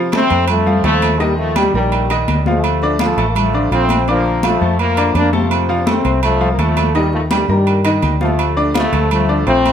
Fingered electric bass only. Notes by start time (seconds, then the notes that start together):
0.30 F2
0.84 D#2
1.74 A#1
2.28 D2
3.17 A1
3.71 A#1
4.61 F2
5.15 F2
6.05 C2
6.58 D#2
7.49 G2
8.02 D2
8.93 D2
9.47 A#1